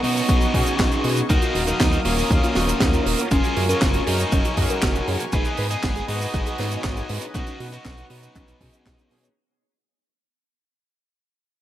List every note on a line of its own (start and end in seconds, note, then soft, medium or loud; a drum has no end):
0.00 0.21 B2 medium
0.00 0.51 B3 loud
0.00 1.26 B3 medium
0.00 0.51 C#4 loud
0.00 0.51 D#4 medium
0.00 1.20 D#4 medium
0.00 0.51 F#4 medium
0.00 1.26 D#5 medium
0.00 1.28 C#6 medium
0.00 open hi-hat loud
0.05 1.20 F#4 medium
0.16 open hi-hat medium
0.16 cabasa medium
0.29 0.47 B1 medium
0.29 kick loud
0.29 closed hi-hat medium
0.29 cabasa medium
0.41 closed hi-hat soft
0.41 cabasa soft
0.54 0.63 B2 medium
0.54 1.27 C#4 loud
0.54 1.27 D#4 medium
0.54 1.27 F#4 medium
0.54 1.27 G#4 loud
0.54 kick medium
0.54 open hi-hat loud
0.66 closed hi-hat medium
0.66 cabasa medium
0.79 0.88 B1 medium
0.79 kick loud
0.79 snare loud
0.79 clap medium
0.79 closed hi-hat medium
0.79 cabasa medium
0.92 closed hi-hat soft
0.92 cabasa medium
1.04 1.22 B2 loud
1.04 open hi-hat loud
1.16 closed hi-hat medium
1.16 cabasa medium
1.30 1.39 D#2 loud
1.30 1.61 D#4 medium
1.30 1.42 D#4 loud
1.30 2.53 D#4 medium
1.30 2.53 F#4 medium
1.30 1.61 F#4 medium
1.30 5.29 A#4 medium
1.30 2.53 A#4 loud
1.30 2.53 F5 medium
1.30 3.29 F5 medium
1.30 3.29 D#6 loud
1.30 kick loud
1.30 closed hi-hat medium
1.30 cabasa medium
1.42 1.51 F4 medium
1.42 closed hi-hat soft
1.42 cabasa soft
1.55 1.73 D#1 medium
1.55 1.60 F#4 loud
1.55 open hi-hat loud
1.67 1.99 F#3 medium
1.67 1.99 D#4 medium
1.67 1.80 A#4 loud
1.67 closed hi-hat medium
1.67 cabasa medium
1.80 1.98 D#2 loud
1.80 1.85 D#4 medium
1.80 kick loud
1.80 snare loud
1.80 clap medium
1.80 closed hi-hat medium
1.80 cabasa medium
1.93 2.01 F4 medium
1.93 closed hi-hat soft
1.93 cabasa soft
2.05 2.23 D#1 medium
2.05 3.21 A#3 medium
2.05 3.21 C#4 medium
2.05 2.17 F#4 medium
2.05 open hi-hat loud
2.18 2.26 A#4 medium
2.18 open hi-hat medium
2.18 cabasa medium
2.31 2.39 D#2 medium
2.31 2.43 D#4 loud
2.31 kick loud
2.31 closed hi-hat medium
2.31 cabasa medium
2.43 2.52 F4 medium
2.43 closed hi-hat soft
2.43 cabasa medium
2.55 2.74 D#1 medium
2.55 3.28 D#4 medium
2.55 3.28 F4 medium
2.55 2.61 F#4 loud
2.55 3.28 F#4 medium
2.55 3.28 C#5 medium
2.55 snare medium
2.55 open hi-hat loud
2.68 2.80 A#4 loud
2.68 closed hi-hat medium
2.68 cabasa medium
2.80 2.99 D#2 medium
2.80 2.86 D#4 medium
2.80 kick loud
2.80 snare loud
2.80 clap medium
2.80 closed hi-hat medium
2.80 cabasa medium
2.93 3.02 F4 medium
2.93 closed hi-hat soft
2.93 cabasa soft
3.06 3.15 D#1 loud
3.06 3.18 F#4 medium
3.06 open hi-hat loud
3.18 3.27 A#4 medium
3.18 closed hi-hat medium
3.18 cabasa medium
3.31 3.40 F#1 loud
3.31 4.54 F#3 medium
3.31 3.43 C#4 loud
3.31 4.54 C#4 medium
3.31 3.63 F4 medium
3.31 4.54 G#4 medium
3.31 3.63 G#4 medium
3.31 4.55 A#4 loud
3.31 7.31 G#5 medium
3.31 5.31 C#6 medium
3.31 kick loud
3.31 closed hi-hat medium
3.31 cabasa medium
3.44 3.52 F#4 medium
3.44 closed hi-hat soft
3.44 cabasa soft
3.57 3.74 F#2 medium
3.57 3.62 G#4 loud
3.57 open hi-hat loud
3.69 4.01 C#4 medium
3.69 4.01 F4 medium
3.69 3.81 A#4 loud
3.69 closed hi-hat medium
3.69 cabasa medium
3.81 4.00 F#1 loud
3.81 3.87 C#4 medium
3.81 kick loud
3.81 snare loud
3.81 clap medium
3.81 closed hi-hat medium
3.81 cabasa medium
3.94 4.03 F#4 medium
3.94 closed hi-hat soft
3.94 cabasa soft
4.07 4.25 F#2 loud
4.07 5.23 F#3 medium
4.07 5.23 D#4 medium
4.07 4.19 G#4 medium
4.07 open hi-hat loud
4.20 4.28 A#4 medium
4.20 closed hi-hat medium
4.20 cabasa medium
4.32 4.41 F#1 medium
4.32 4.44 C#4 loud
4.32 kick loud
4.32 closed hi-hat medium
4.32 cabasa medium
4.45 4.53 F#4 medium
4.45 closed hi-hat soft
4.45 cabasa soft
4.57 4.66 F#2 medium
4.57 5.30 C#4 loud
4.57 5.30 F#4 medium
4.57 4.62 G#4 loud
4.57 5.30 G#4 medium
4.57 5.30 A#4 loud
4.57 kick medium
4.57 open hi-hat loud
4.69 4.82 A#4 loud
4.69 closed hi-hat medium
4.69 cabasa medium
4.82 5.00 F#1 loud
4.82 4.88 C#4 medium
4.82 kick loud
4.82 snare loud
4.82 clap medium
4.82 closed hi-hat medium
4.82 cabasa medium
4.95 5.04 F#4 medium
4.95 closed hi-hat soft
4.95 cabasa soft
5.08 5.17 F#2 loud
5.08 5.20 G#4 medium
5.08 open hi-hat loud
5.20 5.29 A#4 medium
5.20 closed hi-hat medium
5.20 cabasa medium
5.32 5.42 G#1 loud
5.32 6.56 B3 medium
5.32 5.45 D#4 loud
5.32 6.56 D#4 medium
5.32 5.65 G#4 medium
5.32 6.56 G#4 medium
5.32 6.56 B4 medium
5.32 9.33 B4 medium
5.32 5.64 B4 medium
5.32 9.32 D#5 medium
5.32 7.33 D#6 medium
5.32 kick loud
5.32 closed hi-hat medium
5.32 cabasa medium
5.45 5.54 G#4 medium
5.45 closed hi-hat soft
5.45 cabasa medium
5.57 5.76 G#2 medium
5.57 5.63 B4 loud
5.57 open hi-hat loud
5.71 6.02 B3 medium
5.71 6.02 G#4 loud
5.71 5.83 D#5 loud
5.71 closed hi-hat medium
5.71 cabasa medium
5.83 6.01 G#1 loud
5.83 5.88 D#4 medium
5.83 kick loud
5.83 snare loud
5.83 clap medium
5.83 closed hi-hat medium
5.83 cabasa medium
5.96 6.04 G#4 medium
5.96 closed hi-hat soft
5.96 cabasa medium
6.08 6.27 G#2 medium
6.08 7.25 D#4 medium
6.08 7.25 F#4 medium
6.08 6.21 B4 medium
6.08 open hi-hat loud
6.21 6.30 D#5 medium
6.21 open hi-hat medium
6.21 cabasa medium
6.34 6.43 G#1 loud
6.34 6.46 D#4 loud
6.34 kick loud
6.34 closed hi-hat medium
6.34 cabasa medium
6.46 6.55 G#4 medium
6.46 closed hi-hat soft
6.46 cabasa soft
6.58 6.77 G#2 loud
6.58 7.32 B3 medium
6.58 7.32 D#4 medium
6.58 7.32 G#4 medium
6.58 6.64 B4 loud
6.58 7.32 C#5 medium
6.58 snare medium
6.58 open hi-hat loud
6.71 6.84 D#5 loud
6.71 closed hi-hat medium
6.71 cabasa medium
6.84 7.02 G#1 medium
6.84 6.89 D#4 medium
6.84 kick loud
6.84 snare loud
6.84 clap loud
6.84 closed hi-hat medium
6.84 cabasa medium
6.97 7.05 G#4 medium
6.97 closed hi-hat soft
6.97 cabasa soft
7.09 7.18 G#2 loud
7.09 7.22 B4 medium
7.09 open hi-hat loud
7.21 7.31 D#5 medium
7.21 closed hi-hat medium
7.21 cabasa medium
7.34 7.44 B1 loud
7.34 8.58 C#4 loud
7.34 7.47 C#4 loud
7.34 8.58 D#4 medium
7.34 7.66 D#4 medium
7.34 8.58 F#4 medium
7.34 7.66 F#4 loud
7.34 8.58 B4 loud
7.34 9.34 F#5 medium
7.34 9.34 C#6 medium
7.34 kick loud
7.34 closed hi-hat medium
7.34 cabasa medium
7.47 7.56 D#4 medium
7.47 closed hi-hat soft
7.47 cabasa soft
7.60 7.78 B2 medium
7.60 7.65 F#4 loud
7.60 open hi-hat loud
7.72 8.04 D#4 medium
7.72 8.04 F#4 medium
7.72 7.85 B4 loud
7.72 closed hi-hat medium
7.72 cabasa medium
7.85 8.03 B1 loud
7.85 7.90 C#4 medium
7.85 kick loud
7.85 snare loud
7.85 clap loud
7.85 closed hi-hat medium
7.85 cabasa medium
7.97 8.06 D#4 medium
7.97 closed hi-hat soft
7.97 cabasa soft
8.10 8.28 B2 medium
8.10 9.26 B3 medium
8.10 9.26 D#4 medium
8.10 8.22 F#4 medium
8.10 open hi-hat loud
8.23 8.31 B4 medium
8.23 closed hi-hat medium
8.23 cabasa medium
8.35 8.53 B1 medium
8.35 8.48 C#4 loud
8.35 kick loud
8.35 clap medium
8.35 closed hi-hat medium
8.35 cabasa medium
8.48 8.57 D#4 medium
8.48 closed hi-hat medium
8.48 cabasa soft
8.61 8.70 B2 medium
8.61 8.66 C#4 medium
8.61 9.33 C#4 loud
8.61 9.34 D#4 medium
8.61 9.34 F#4 medium
8.61 9.33 G#4 loud
8.61 kick medium
8.61 open hi-hat loud
8.73 8.78 D#5 medium
8.73 closed hi-hat medium
8.73 cabasa medium
8.86 8.95 B1 medium
8.86 8.94 D#5 loud
8.86 kick loud
8.86 snare loud
8.86 clap loud
8.86 closed hi-hat medium
8.86 cabasa medium
8.99 9.11 D#4 medium
8.99 closed hi-hat soft
8.99 cabasa soft
9.11 9.29 B2 loud
9.11 9.23 B4 loud
9.11 open hi-hat loud
9.23 9.32 C#5 medium
9.23 closed hi-hat medium
9.23 cabasa medium